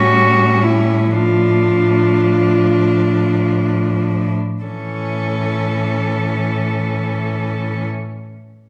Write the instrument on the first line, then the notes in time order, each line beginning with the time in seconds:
cello
Already playing: A2 G3 C#4 F#4
0.62 E4
1.11 F3 D4 F4
4.62 A2 E3 C#4 A4